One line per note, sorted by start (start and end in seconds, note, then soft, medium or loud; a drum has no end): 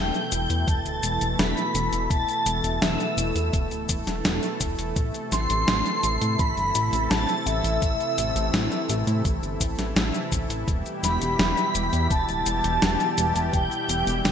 0.00 0.12 E1 loud
0.00 4.92 B2 medium
0.00 4.92 E3 medium
0.00 10.64 A3 medium
0.00 14.32 E4 medium
0.00 10.64 A4 medium
0.00 0.69 G5 loud
0.00 0.64 G6 loud
0.14 closed hi-hat soft
0.14 shaker soft
0.32 0.47 E1 loud
0.32 closed hi-hat loud
0.32 shaker medium
0.50 0.65 E2 medium
0.50 closed hi-hat medium
0.50 shaker soft
0.67 0.83 E1 loud
0.67 1.40 A5 loud
0.67 1.35 A6 loud
0.67 kick loud
0.67 closed hi-hat medium
0.67 shaker soft
0.85 1.01 D1 medium
0.85 closed hi-hat soft
0.85 shaker soft
1.03 1.19 E1 medium
1.03 closed hi-hat loud
1.03 shaker medium
1.21 1.37 E1 medium
1.21 closed hi-hat medium
1.21 shaker soft
1.39 1.54 E1 loud
1.39 2.11 B5 loud
1.39 2.06 B6 loud
1.39 snare loud
1.39 closed hi-hat medium
1.39 shaker soft
1.57 closed hi-hat soft
1.57 shaker soft
1.75 1.90 E1 loud
1.75 closed hi-hat medium
1.75 shaker medium
1.92 2.08 E1 medium
1.92 closed hi-hat medium
1.92 shaker soft
2.10 2.26 E1 loud
2.10 2.83 A5 loud
2.10 2.78 A6 loud
2.10 kick loud
2.10 closed hi-hat medium
2.10 shaker soft
2.29 closed hi-hat soft
2.29 shaker soft
2.46 2.62 E1 medium
2.46 closed hi-hat loud
2.46 shaker medium
2.64 2.79 E1 medium
2.64 closed hi-hat medium
2.64 shaker soft
2.82 2.97 E1 loud
2.82 3.53 E5 medium
2.82 3.49 E6 medium
2.82 snare loud
2.82 closed hi-hat medium
2.82 shaker soft
3.00 closed hi-hat soft
3.00 shaker soft
3.17 3.33 E1 loud
3.17 closed hi-hat loud
3.17 shaker medium
3.35 3.51 E2 medium
3.35 closed hi-hat medium
3.35 shaker soft
3.53 3.69 E1 loud
3.53 kick loud
3.53 closed hi-hat medium
3.53 shaker soft
3.71 3.87 D1 medium
3.71 closed hi-hat soft
3.71 shaker soft
3.89 4.05 E1 medium
3.89 kick medium
3.89 closed hi-hat loud
3.89 shaker medium
4.07 4.22 E1 medium
4.07 snare soft
4.07 closed hi-hat medium
4.07 shaker soft
4.25 4.40 E1 loud
4.25 snare loud
4.25 closed hi-hat medium
4.25 shaker soft
4.43 closed hi-hat soft
4.43 shaker soft
4.61 4.76 E1 loud
4.61 kick medium
4.61 closed hi-hat medium
4.61 shaker medium
4.78 4.94 E1 medium
4.78 closed hi-hat medium
4.78 shaker soft
4.96 5.12 A1 loud
4.96 10.64 C3 medium
4.96 14.32 E3 medium
4.96 kick loud
4.96 closed hi-hat medium
4.96 shaker soft
5.14 closed hi-hat soft
5.14 shaker soft
5.32 5.47 A1 loud
5.32 6.35 C6 loud
5.32 6.35 C7 loud
5.32 snare soft
5.32 closed hi-hat loud
5.32 shaker medium
5.50 5.65 A1 medium
5.50 closed hi-hat medium
5.50 shaker soft
5.68 5.83 A1 loud
5.68 snare loud
5.68 closed hi-hat medium
5.68 shaker soft
5.86 closed hi-hat soft
5.86 shaker soft
6.04 6.19 A1 medium
6.04 closed hi-hat loud
6.04 shaker medium
6.21 6.37 A2 medium
6.21 closed hi-hat medium
6.21 shaker soft
6.39 6.55 A1 loud
6.39 7.12 B5 loud
6.39 7.07 B6 loud
6.39 kick loud
6.39 closed hi-hat medium
6.39 shaker soft
6.57 6.72 G1 medium
6.57 closed hi-hat soft
6.57 shaker soft
6.75 6.90 A1 loud
6.75 closed hi-hat loud
6.75 shaker medium
6.93 7.08 A1 medium
6.93 closed hi-hat medium
6.93 shaker soft
7.10 7.26 A1 loud
7.10 7.48 A5 loud
7.10 7.44 A6 loud
7.10 snare loud
7.10 closed hi-hat medium
7.10 shaker soft
7.29 closed hi-hat soft
7.29 shaker soft
7.46 7.62 A1 loud
7.46 9.61 E5 medium
7.46 9.57 E6 loud
7.46 closed hi-hat loud
7.46 shaker medium
7.64 7.79 A1 medium
7.64 closed hi-hat medium
7.64 shaker soft
7.82 7.97 A1 loud
7.82 kick loud
7.82 closed hi-hat medium
7.82 shaker soft
8.00 closed hi-hat soft
8.00 shaker soft
8.18 8.33 A1 loud
8.18 closed hi-hat medium
8.18 shaker medium
8.36 8.51 A1 medium
8.36 closed hi-hat medium
8.36 shaker soft
8.54 8.69 A1 loud
8.54 snare loud
8.54 closed hi-hat medium
8.54 shaker soft
8.72 closed hi-hat soft
8.72 shaker soft
8.89 9.05 A1 loud
8.89 closed hi-hat medium
8.89 shaker medium
9.07 9.23 A2 medium
9.07 closed hi-hat medium
9.07 shaker soft
9.25 9.40 A1 loud
9.25 kick loud
9.25 closed hi-hat medium
9.25 shaker soft
9.43 9.58 G1 medium
9.43 closed hi-hat soft
9.43 shaker soft
9.61 9.76 A1 loud
9.61 kick medium
9.61 closed hi-hat loud
9.61 shaker medium
9.78 9.94 A1 medium
9.78 snare soft
9.78 closed hi-hat medium
9.78 shaker soft
9.96 10.12 A1 loud
9.96 snare loud
9.96 closed hi-hat medium
9.96 shaker soft
10.14 closed hi-hat soft
10.14 shaker soft
10.32 10.47 A1 loud
10.32 kick medium
10.32 closed hi-hat medium
10.32 shaker medium
10.49 10.65 A1 medium
10.49 closed hi-hat medium
10.49 shaker soft
10.68 10.83 E1 loud
10.68 14.32 B2 medium
10.68 14.32 G3 medium
10.68 14.32 G4 medium
10.68 kick loud
10.68 closed hi-hat medium
10.68 shaker soft
10.86 closed hi-hat soft
10.86 shaker soft
11.03 11.19 E1 loud
11.03 12.12 B5 loud
11.03 12.07 B6 loud
11.03 snare soft
11.03 closed hi-hat medium
11.03 shaker medium
11.21 11.37 E1 medium
11.21 closed hi-hat medium
11.21 shaker soft
11.39 11.55 E1 loud
11.39 snare loud
11.39 closed hi-hat soft
11.39 shaker soft
11.57 closed hi-hat soft
11.57 shaker soft
11.75 11.90 E1 medium
11.75 closed hi-hat medium
11.75 shaker medium
11.93 12.08 E2 medium
11.93 closed hi-hat soft
11.93 shaker soft
12.10 12.26 E1 loud
12.10 13.55 A5 loud
12.10 13.50 A6 loud
12.10 kick loud
12.10 closed hi-hat soft
12.10 shaker soft
12.29 12.44 D1 medium
12.29 closed hi-hat soft
12.29 shaker soft
12.46 12.62 E1 medium
12.46 closed hi-hat medium
12.46 shaker medium
12.64 12.80 E1 medium
12.64 closed hi-hat medium
12.64 shaker soft
12.82 12.97 E1 loud
12.82 snare loud
12.82 closed hi-hat medium
12.82 shaker soft
13.00 closed hi-hat soft
13.00 shaker soft
13.18 13.33 E1 loud
13.18 closed hi-hat medium
13.18 shaker medium
13.35 13.51 E1 medium
13.35 closed hi-hat medium
13.35 shaker soft
13.53 13.69 E1 loud
13.53 14.24 G5 loud
13.53 14.21 G6 medium
13.53 kick loud
13.53 closed hi-hat medium
13.53 shaker soft
13.71 closed hi-hat soft
13.71 shaker soft
13.89 14.04 E1 loud
13.89 closed hi-hat medium
13.89 shaker medium
14.07 14.22 E1 medium
14.07 closed hi-hat medium
14.07 shaker soft
14.25 14.32 E1 loud
14.25 14.32 G5 medium
14.25 14.32 G6 medium
14.25 snare loud
14.25 closed hi-hat soft
14.25 shaker soft